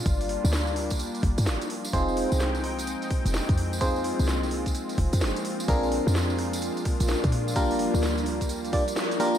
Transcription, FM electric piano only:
X:1
M:4/4
L:1/8
Q:"Swing 16ths" 1/4=128
K:Fdor
V:1 name="FM electric piano"
z8 | [CEFAc]8 | [CEFAc]6- [CEFAc] z | [CDFAB]8 |
[B,DFGB]4- [B,DFGB] [B,DFGd] z [B,DFGB] |]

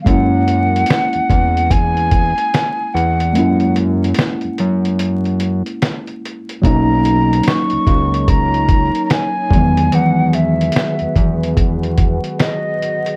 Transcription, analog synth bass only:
X:1
M:4/4
L:1/16
Q:"Swing 16ths" 1/4=73
K:F#mix
V:1 name="Analog synth bass" clef=bass
F,,4 z E,, E,,4- E,, z3 E,,2 | F,,4 z F,, F,,4- F,, z4 z | B,,,4 z C,, C,,4- C,, z3 E,,2 | E,,4 z E,, E,,4- E,, z4 z |]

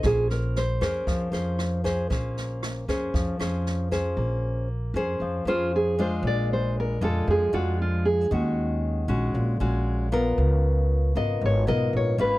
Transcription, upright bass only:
X:1
M:4/4
L:1/8
Q:1/4=116
K:Bbm
V:1 name="Upright bass" clef=bass
B,,,3 F,, F,, F,,3 | B,,,3 F,, F,, F,,3 | B,,,3 F,, F,, F,,3 | B,,,3 F,, F,, F,,3 |
E,,3 B,,, B,,, B,,,3 | D,,3 A,,, A,,, _C,, B,,, A,,, |]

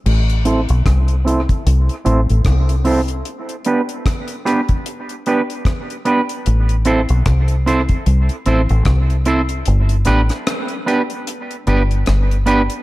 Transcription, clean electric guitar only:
X:1
M:4/4
L:1/8
Q:"Swing 16ths" 1/4=75
K:Am
V:1 name="Clean electric guitar"
z [CEAc] z [CEAc] z [CEAc] z [CEAc] | z [B,DGB] z [B,DGB] z [B,DGB] z [B,DGB] | z [CEAc] z [CEAc] z [CEAc] z [CEAc] | z [B,DGB] z [B,DGB] z [B,DGB] z [B,DGB] |]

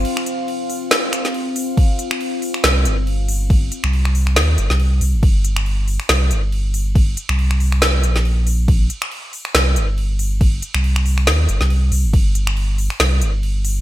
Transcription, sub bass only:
X:1
M:4/4
L:1/16
Q:"Swing 16ths" 1/4=139
K:Cm
V:1 name="Sub bass" clef=bass
z16 | z8 C,,2 G,,,6- | G,,,2 z C,,4- C,, E,,2 G,,, C,,3 C,, G,,,- | G,,,6- G,,, z C,,2 G,,,6- |
G,,,2 z C,,6- C,, B,,,6- | B,,,2 z6 C,,2 G,,,6- | G,,,2 z C,,4- C,, E,,2 G,,, C,,3 C,, G,,,- | G,,,6- G,,, z C,,2 G,,,6 |]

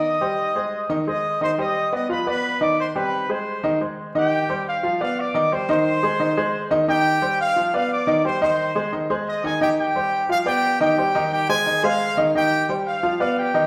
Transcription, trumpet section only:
X:1
M:4/4
L:1/8
Q:1/4=176
K:Cm
V:1 name="Trumpet section"
[ee']4- [ee'] z [ee']2 | [cc'] [ee']2 [ee'] [=B=b] [Bb]2 [dd'] | [cc'] [=B=b]2 [cc']3 z2 | [Gg]3 f2 f [dd']2 |
[cc'] [cc']6 z | [Gg]3 f2 f [dd']2 | [cc'] [cc']3 z2 [ee'] [Aa] | [Gg] [Gg]3 f [Gg]2 [Gg]- |
[Gg]2 [Gg] [Aa]2 f2 z | [Gg]2 z f2 f [Gg]2 |]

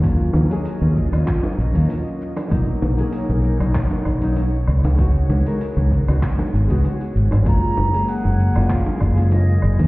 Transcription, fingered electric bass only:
X:1
M:4/4
L:1/16
Q:"Swing 16ths" 1/4=97
K:F#
V:1 name="Fingered electric bass" clef=bass
D,,2 D,, z2 D,, z D,, z2 A,,, D,, z4 | B,,, z B,,, z2 B,,, z B,,, z2 B,,,4 C,, C,,- | C,,2 C,, z2 C,, z C,, z2 G,,, C,, z2 G,,, G,,, | F,,, z F,,, z2 F,,, z F,,, z2 F,,,4 F,,, D,, |]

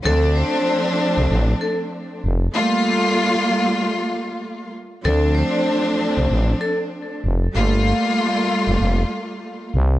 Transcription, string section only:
X:1
M:4/4
L:1/8
Q:"Swing 16ths" 1/4=96
K:Dm
V:1 name="String section"
[F,A,CD]6- [F,A,CD] z | [G,A,B,F]6- [G,A,B,F] z | [F,A,CD]6- [F,A,CD] z | [G,A,B,F]6- [G,A,B,F] z |]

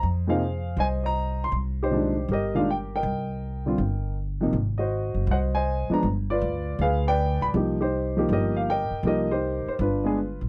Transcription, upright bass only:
X:1
M:4/4
L:1/8
Q:"Swing" 1/4=160
K:Cm
V:1 name="Upright bass" clef=bass
F,,4 C,,4 | C,,4 G,,,4 | C,,4 G,,,4 | A,,,3 _G,,, C,,3 z |
G,,,2 D,,2 D,,3 _D,, | C,,4 G,,,3 z | C,,3 z G,,,3 =B,,, |]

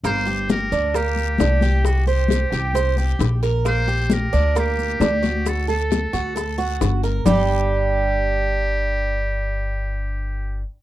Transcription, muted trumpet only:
X:1
M:4/4
L:1/8
Q:1/4=133
K:Gm
V:1 name="Muted trumpet"
c2 B2 G4 | ^F G6 z | c2 B2 G4 | A A6 z |
G8- | G8 |]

